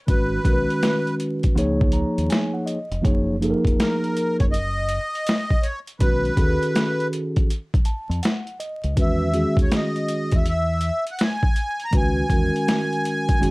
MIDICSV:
0, 0, Header, 1, 5, 480
1, 0, Start_track
1, 0, Tempo, 740741
1, 51, Time_signature, 4, 2, 24, 8
1, 8752, End_track
2, 0, Start_track
2, 0, Title_t, "Accordion"
2, 0, Program_c, 0, 21
2, 48, Note_on_c, 0, 71, 96
2, 744, Note_off_c, 0, 71, 0
2, 2465, Note_on_c, 0, 70, 87
2, 2830, Note_off_c, 0, 70, 0
2, 2852, Note_on_c, 0, 73, 94
2, 2889, Note_off_c, 0, 73, 0
2, 2930, Note_on_c, 0, 75, 121
2, 3644, Note_on_c, 0, 73, 95
2, 3672, Note_off_c, 0, 75, 0
2, 3754, Note_off_c, 0, 73, 0
2, 3888, Note_on_c, 0, 71, 99
2, 4583, Note_off_c, 0, 71, 0
2, 5837, Note_on_c, 0, 76, 95
2, 6196, Note_off_c, 0, 76, 0
2, 6237, Note_on_c, 0, 73, 75
2, 6307, Note_off_c, 0, 73, 0
2, 6325, Note_on_c, 0, 75, 89
2, 6711, Note_on_c, 0, 76, 75
2, 6717, Note_off_c, 0, 75, 0
2, 6777, Note_off_c, 0, 76, 0
2, 6798, Note_on_c, 0, 76, 101
2, 7157, Note_off_c, 0, 76, 0
2, 7199, Note_on_c, 0, 78, 84
2, 7268, Note_off_c, 0, 78, 0
2, 7278, Note_on_c, 0, 80, 101
2, 7674, Note_off_c, 0, 80, 0
2, 7676, Note_on_c, 0, 82, 101
2, 7746, Note_off_c, 0, 82, 0
2, 7756, Note_on_c, 0, 80, 107
2, 8752, Note_off_c, 0, 80, 0
2, 8752, End_track
3, 0, Start_track
3, 0, Title_t, "Tine electric piano"
3, 0, Program_c, 1, 4
3, 44, Note_on_c, 1, 51, 69
3, 51, Note_on_c, 1, 56, 61
3, 54, Note_on_c, 1, 61, 62
3, 62, Note_on_c, 1, 66, 65
3, 68, Note_on_c, 1, 71, 76
3, 247, Note_off_c, 1, 51, 0
3, 250, Note_off_c, 1, 56, 0
3, 252, Note_off_c, 1, 61, 0
3, 256, Note_off_c, 1, 66, 0
3, 259, Note_off_c, 1, 71, 0
3, 281, Note_on_c, 1, 51, 74
3, 288, Note_on_c, 1, 56, 60
3, 290, Note_on_c, 1, 61, 65
3, 298, Note_on_c, 1, 66, 62
3, 303, Note_on_c, 1, 70, 56
3, 346, Note_on_c, 1, 71, 72
3, 353, Note_off_c, 1, 70, 0
3, 1001, Note_on_c, 1, 53, 82
3, 1006, Note_off_c, 1, 51, 0
3, 1008, Note_on_c, 1, 58, 78
3, 1009, Note_off_c, 1, 56, 0
3, 1011, Note_off_c, 1, 61, 0
3, 1012, Note_on_c, 1, 63, 78
3, 1014, Note_off_c, 1, 66, 0
3, 1020, Note_on_c, 1, 68, 82
3, 1027, Note_on_c, 1, 73, 99
3, 1038, Note_off_c, 1, 71, 0
3, 1250, Note_on_c, 1, 82, 66
3, 1474, Note_off_c, 1, 82, 0
3, 1490, Note_on_c, 1, 80, 61
3, 1638, Note_off_c, 1, 80, 0
3, 1644, Note_on_c, 1, 78, 66
3, 1723, Note_off_c, 1, 78, 0
3, 1724, Note_on_c, 1, 75, 73
3, 1789, Note_off_c, 1, 53, 0
3, 1793, Note_off_c, 1, 58, 0
3, 1795, Note_off_c, 1, 63, 0
3, 1799, Note_off_c, 1, 68, 0
3, 1802, Note_off_c, 1, 73, 0
3, 1950, Note_off_c, 1, 75, 0
3, 1955, Note_on_c, 1, 53, 79
3, 1962, Note_on_c, 1, 58, 81
3, 1966, Note_on_c, 1, 63, 80
3, 1975, Note_on_c, 1, 68, 74
3, 1977, Note_on_c, 1, 73, 91
3, 2163, Note_off_c, 1, 53, 0
3, 2166, Note_off_c, 1, 58, 0
3, 2168, Note_off_c, 1, 63, 0
3, 2172, Note_off_c, 1, 68, 0
3, 2174, Note_off_c, 1, 73, 0
3, 2205, Note_on_c, 1, 53, 83
3, 2212, Note_on_c, 1, 58, 75
3, 2214, Note_on_c, 1, 63, 81
3, 2223, Note_on_c, 1, 68, 73
3, 2230, Note_on_c, 1, 69, 76
3, 2270, Note_on_c, 1, 70, 88
3, 2276, Note_off_c, 1, 69, 0
3, 2933, Note_off_c, 1, 53, 0
3, 2936, Note_off_c, 1, 58, 0
3, 2937, Note_off_c, 1, 63, 0
3, 2942, Note_off_c, 1, 68, 0
3, 2965, Note_off_c, 1, 70, 0
3, 3882, Note_on_c, 1, 51, 73
3, 3888, Note_on_c, 1, 56, 60
3, 3895, Note_on_c, 1, 61, 63
3, 3900, Note_on_c, 1, 66, 65
3, 3907, Note_on_c, 1, 71, 77
3, 4086, Note_off_c, 1, 51, 0
3, 4089, Note_off_c, 1, 56, 0
3, 4093, Note_off_c, 1, 61, 0
3, 4095, Note_off_c, 1, 66, 0
3, 4099, Note_off_c, 1, 71, 0
3, 4115, Note_on_c, 1, 50, 54
3, 4121, Note_on_c, 1, 68, 59
3, 4127, Note_on_c, 1, 61, 58
3, 4133, Note_on_c, 1, 66, 59
3, 4141, Note_on_c, 1, 69, 73
3, 4160, Note_on_c, 1, 51, 73
3, 4178, Note_off_c, 1, 50, 0
3, 4850, Note_off_c, 1, 68, 0
3, 4854, Note_off_c, 1, 61, 0
3, 4857, Note_off_c, 1, 66, 0
3, 4861, Note_off_c, 1, 69, 0
3, 4870, Note_off_c, 1, 51, 0
3, 5090, Note_on_c, 1, 81, 63
3, 5314, Note_off_c, 1, 81, 0
3, 5332, Note_on_c, 1, 78, 66
3, 5554, Note_off_c, 1, 78, 0
3, 5571, Note_on_c, 1, 75, 74
3, 5794, Note_off_c, 1, 75, 0
3, 5800, Note_on_c, 1, 51, 63
3, 5807, Note_on_c, 1, 56, 68
3, 5815, Note_on_c, 1, 61, 71
3, 5818, Note_on_c, 1, 66, 60
3, 5826, Note_on_c, 1, 71, 80
3, 6005, Note_off_c, 1, 51, 0
3, 6009, Note_off_c, 1, 56, 0
3, 6013, Note_off_c, 1, 61, 0
3, 6014, Note_off_c, 1, 66, 0
3, 6018, Note_off_c, 1, 71, 0
3, 6034, Note_on_c, 1, 51, 67
3, 6042, Note_on_c, 1, 56, 61
3, 6047, Note_on_c, 1, 61, 57
3, 6052, Note_on_c, 1, 66, 64
3, 6060, Note_on_c, 1, 68, 74
3, 6767, Note_off_c, 1, 51, 0
3, 6771, Note_off_c, 1, 56, 0
3, 6774, Note_off_c, 1, 61, 0
3, 6776, Note_off_c, 1, 66, 0
3, 6780, Note_off_c, 1, 68, 0
3, 7719, Note_on_c, 1, 51, 76
3, 7722, Note_on_c, 1, 56, 64
3, 7730, Note_on_c, 1, 61, 64
3, 7738, Note_on_c, 1, 66, 69
3, 7741, Note_on_c, 1, 71, 75
3, 7924, Note_off_c, 1, 51, 0
3, 7926, Note_off_c, 1, 56, 0
3, 7930, Note_off_c, 1, 61, 0
3, 7934, Note_off_c, 1, 66, 0
3, 7936, Note_off_c, 1, 71, 0
3, 7963, Note_on_c, 1, 51, 63
3, 7967, Note_on_c, 1, 56, 61
3, 7974, Note_on_c, 1, 61, 64
3, 7980, Note_on_c, 1, 66, 62
3, 7983, Note_on_c, 1, 70, 79
3, 8672, Note_off_c, 1, 51, 0
3, 8677, Note_off_c, 1, 56, 0
3, 8679, Note_on_c, 1, 51, 93
3, 8684, Note_off_c, 1, 61, 0
3, 8685, Note_on_c, 1, 56, 80
3, 8689, Note_off_c, 1, 66, 0
3, 8692, Note_on_c, 1, 61, 86
3, 8697, Note_off_c, 1, 70, 0
3, 8697, Note_on_c, 1, 66, 80
3, 8704, Note_on_c, 1, 68, 74
3, 8752, Note_off_c, 1, 51, 0
3, 8752, Note_off_c, 1, 56, 0
3, 8752, Note_off_c, 1, 61, 0
3, 8752, Note_off_c, 1, 66, 0
3, 8752, Note_off_c, 1, 68, 0
3, 8752, End_track
4, 0, Start_track
4, 0, Title_t, "Fingered electric bass"
4, 0, Program_c, 2, 33
4, 54, Note_on_c, 2, 32, 90
4, 238, Note_off_c, 2, 32, 0
4, 290, Note_on_c, 2, 35, 84
4, 413, Note_off_c, 2, 35, 0
4, 1009, Note_on_c, 2, 37, 107
4, 1317, Note_off_c, 2, 37, 0
4, 1411, Note_on_c, 2, 39, 85
4, 1474, Note_off_c, 2, 39, 0
4, 1887, Note_on_c, 2, 29, 77
4, 1951, Note_off_c, 2, 29, 0
4, 1974, Note_on_c, 2, 30, 85
4, 2280, Note_off_c, 2, 30, 0
4, 2363, Note_on_c, 2, 29, 84
4, 2429, Note_off_c, 2, 29, 0
4, 2854, Note_on_c, 2, 30, 89
4, 3223, Note_off_c, 2, 30, 0
4, 3892, Note_on_c, 2, 35, 94
4, 4077, Note_off_c, 2, 35, 0
4, 4129, Note_on_c, 2, 39, 89
4, 4252, Note_off_c, 2, 39, 0
4, 5246, Note_on_c, 2, 41, 86
4, 5310, Note_off_c, 2, 41, 0
4, 5728, Note_on_c, 2, 37, 82
4, 5791, Note_off_c, 2, 37, 0
4, 5811, Note_on_c, 2, 40, 89
4, 6118, Note_off_c, 2, 40, 0
4, 6200, Note_on_c, 2, 39, 80
4, 6267, Note_off_c, 2, 39, 0
4, 6690, Note_on_c, 2, 40, 93
4, 7060, Note_off_c, 2, 40, 0
4, 7730, Note_on_c, 2, 37, 94
4, 7916, Note_off_c, 2, 37, 0
4, 7967, Note_on_c, 2, 40, 94
4, 8091, Note_off_c, 2, 40, 0
4, 8693, Note_on_c, 2, 30, 102
4, 8752, Note_off_c, 2, 30, 0
4, 8752, End_track
5, 0, Start_track
5, 0, Title_t, "Drums"
5, 53, Note_on_c, 9, 36, 106
5, 53, Note_on_c, 9, 42, 75
5, 117, Note_off_c, 9, 42, 0
5, 118, Note_off_c, 9, 36, 0
5, 291, Note_on_c, 9, 36, 77
5, 293, Note_on_c, 9, 42, 61
5, 356, Note_off_c, 9, 36, 0
5, 358, Note_off_c, 9, 42, 0
5, 456, Note_on_c, 9, 42, 45
5, 521, Note_off_c, 9, 42, 0
5, 536, Note_on_c, 9, 42, 86
5, 538, Note_on_c, 9, 38, 116
5, 601, Note_off_c, 9, 42, 0
5, 602, Note_off_c, 9, 38, 0
5, 694, Note_on_c, 9, 42, 35
5, 759, Note_off_c, 9, 42, 0
5, 776, Note_on_c, 9, 42, 68
5, 841, Note_off_c, 9, 42, 0
5, 928, Note_on_c, 9, 42, 49
5, 932, Note_on_c, 9, 36, 76
5, 993, Note_off_c, 9, 42, 0
5, 997, Note_off_c, 9, 36, 0
5, 1020, Note_on_c, 9, 42, 78
5, 1085, Note_off_c, 9, 42, 0
5, 1173, Note_on_c, 9, 36, 92
5, 1238, Note_off_c, 9, 36, 0
5, 1243, Note_on_c, 9, 42, 71
5, 1308, Note_off_c, 9, 42, 0
5, 1413, Note_on_c, 9, 42, 52
5, 1478, Note_off_c, 9, 42, 0
5, 1490, Note_on_c, 9, 42, 90
5, 1506, Note_on_c, 9, 38, 103
5, 1555, Note_off_c, 9, 42, 0
5, 1571, Note_off_c, 9, 38, 0
5, 1733, Note_on_c, 9, 42, 58
5, 1798, Note_off_c, 9, 42, 0
5, 1890, Note_on_c, 9, 42, 39
5, 1955, Note_off_c, 9, 42, 0
5, 1974, Note_on_c, 9, 36, 112
5, 1976, Note_on_c, 9, 42, 83
5, 2039, Note_off_c, 9, 36, 0
5, 2040, Note_off_c, 9, 42, 0
5, 2218, Note_on_c, 9, 42, 60
5, 2283, Note_off_c, 9, 42, 0
5, 2363, Note_on_c, 9, 36, 76
5, 2378, Note_on_c, 9, 42, 42
5, 2428, Note_off_c, 9, 36, 0
5, 2442, Note_off_c, 9, 42, 0
5, 2460, Note_on_c, 9, 42, 79
5, 2462, Note_on_c, 9, 38, 110
5, 2525, Note_off_c, 9, 42, 0
5, 2527, Note_off_c, 9, 38, 0
5, 2618, Note_on_c, 9, 42, 36
5, 2682, Note_off_c, 9, 42, 0
5, 2700, Note_on_c, 9, 42, 67
5, 2765, Note_off_c, 9, 42, 0
5, 2851, Note_on_c, 9, 42, 47
5, 2853, Note_on_c, 9, 36, 82
5, 2916, Note_off_c, 9, 42, 0
5, 2918, Note_off_c, 9, 36, 0
5, 2941, Note_on_c, 9, 42, 76
5, 3006, Note_off_c, 9, 42, 0
5, 3166, Note_on_c, 9, 42, 74
5, 3231, Note_off_c, 9, 42, 0
5, 3338, Note_on_c, 9, 42, 49
5, 3403, Note_off_c, 9, 42, 0
5, 3412, Note_on_c, 9, 42, 101
5, 3427, Note_on_c, 9, 38, 108
5, 3477, Note_off_c, 9, 42, 0
5, 3492, Note_off_c, 9, 38, 0
5, 3567, Note_on_c, 9, 36, 78
5, 3632, Note_off_c, 9, 36, 0
5, 3651, Note_on_c, 9, 42, 65
5, 3716, Note_off_c, 9, 42, 0
5, 3807, Note_on_c, 9, 42, 45
5, 3871, Note_off_c, 9, 42, 0
5, 3891, Note_on_c, 9, 42, 76
5, 3893, Note_on_c, 9, 36, 95
5, 3956, Note_off_c, 9, 42, 0
5, 3957, Note_off_c, 9, 36, 0
5, 4051, Note_on_c, 9, 42, 36
5, 4116, Note_off_c, 9, 42, 0
5, 4129, Note_on_c, 9, 36, 76
5, 4130, Note_on_c, 9, 42, 56
5, 4194, Note_off_c, 9, 36, 0
5, 4194, Note_off_c, 9, 42, 0
5, 4294, Note_on_c, 9, 42, 49
5, 4359, Note_off_c, 9, 42, 0
5, 4377, Note_on_c, 9, 42, 92
5, 4379, Note_on_c, 9, 38, 97
5, 4442, Note_off_c, 9, 42, 0
5, 4444, Note_off_c, 9, 38, 0
5, 4537, Note_on_c, 9, 42, 34
5, 4601, Note_off_c, 9, 42, 0
5, 4620, Note_on_c, 9, 42, 68
5, 4684, Note_off_c, 9, 42, 0
5, 4771, Note_on_c, 9, 42, 44
5, 4774, Note_on_c, 9, 36, 86
5, 4836, Note_off_c, 9, 42, 0
5, 4838, Note_off_c, 9, 36, 0
5, 4862, Note_on_c, 9, 42, 78
5, 4927, Note_off_c, 9, 42, 0
5, 5015, Note_on_c, 9, 36, 92
5, 5020, Note_on_c, 9, 42, 35
5, 5080, Note_off_c, 9, 36, 0
5, 5085, Note_off_c, 9, 42, 0
5, 5087, Note_on_c, 9, 42, 69
5, 5152, Note_off_c, 9, 42, 0
5, 5258, Note_on_c, 9, 42, 50
5, 5323, Note_off_c, 9, 42, 0
5, 5332, Note_on_c, 9, 42, 97
5, 5348, Note_on_c, 9, 38, 110
5, 5397, Note_off_c, 9, 42, 0
5, 5412, Note_off_c, 9, 38, 0
5, 5489, Note_on_c, 9, 42, 35
5, 5553, Note_off_c, 9, 42, 0
5, 5574, Note_on_c, 9, 42, 66
5, 5638, Note_off_c, 9, 42, 0
5, 5726, Note_on_c, 9, 42, 40
5, 5790, Note_off_c, 9, 42, 0
5, 5812, Note_on_c, 9, 36, 94
5, 5812, Note_on_c, 9, 42, 82
5, 5877, Note_off_c, 9, 36, 0
5, 5877, Note_off_c, 9, 42, 0
5, 6049, Note_on_c, 9, 42, 59
5, 6114, Note_off_c, 9, 42, 0
5, 6200, Note_on_c, 9, 36, 83
5, 6213, Note_on_c, 9, 42, 48
5, 6265, Note_off_c, 9, 36, 0
5, 6278, Note_off_c, 9, 42, 0
5, 6296, Note_on_c, 9, 42, 89
5, 6298, Note_on_c, 9, 38, 110
5, 6361, Note_off_c, 9, 42, 0
5, 6362, Note_off_c, 9, 38, 0
5, 6453, Note_on_c, 9, 42, 35
5, 6518, Note_off_c, 9, 42, 0
5, 6535, Note_on_c, 9, 42, 76
5, 6600, Note_off_c, 9, 42, 0
5, 6684, Note_on_c, 9, 42, 53
5, 6690, Note_on_c, 9, 36, 78
5, 6749, Note_off_c, 9, 42, 0
5, 6754, Note_off_c, 9, 36, 0
5, 6775, Note_on_c, 9, 42, 78
5, 6840, Note_off_c, 9, 42, 0
5, 7003, Note_on_c, 9, 42, 72
5, 7068, Note_off_c, 9, 42, 0
5, 7171, Note_on_c, 9, 42, 47
5, 7236, Note_off_c, 9, 42, 0
5, 7249, Note_on_c, 9, 42, 101
5, 7264, Note_on_c, 9, 38, 109
5, 7314, Note_off_c, 9, 42, 0
5, 7329, Note_off_c, 9, 38, 0
5, 7406, Note_on_c, 9, 36, 88
5, 7470, Note_off_c, 9, 36, 0
5, 7491, Note_on_c, 9, 42, 64
5, 7556, Note_off_c, 9, 42, 0
5, 7645, Note_on_c, 9, 42, 45
5, 7709, Note_off_c, 9, 42, 0
5, 7728, Note_on_c, 9, 42, 81
5, 7730, Note_on_c, 9, 36, 100
5, 7793, Note_off_c, 9, 42, 0
5, 7795, Note_off_c, 9, 36, 0
5, 7968, Note_on_c, 9, 36, 84
5, 7971, Note_on_c, 9, 42, 59
5, 8033, Note_off_c, 9, 36, 0
5, 8035, Note_off_c, 9, 42, 0
5, 8137, Note_on_c, 9, 42, 48
5, 8202, Note_off_c, 9, 42, 0
5, 8218, Note_on_c, 9, 42, 81
5, 8220, Note_on_c, 9, 38, 113
5, 8283, Note_off_c, 9, 42, 0
5, 8285, Note_off_c, 9, 38, 0
5, 8377, Note_on_c, 9, 42, 33
5, 8441, Note_off_c, 9, 42, 0
5, 8458, Note_on_c, 9, 42, 73
5, 8523, Note_off_c, 9, 42, 0
5, 8610, Note_on_c, 9, 42, 52
5, 8612, Note_on_c, 9, 36, 90
5, 8675, Note_off_c, 9, 42, 0
5, 8676, Note_off_c, 9, 36, 0
5, 8702, Note_on_c, 9, 42, 78
5, 8752, Note_off_c, 9, 42, 0
5, 8752, End_track
0, 0, End_of_file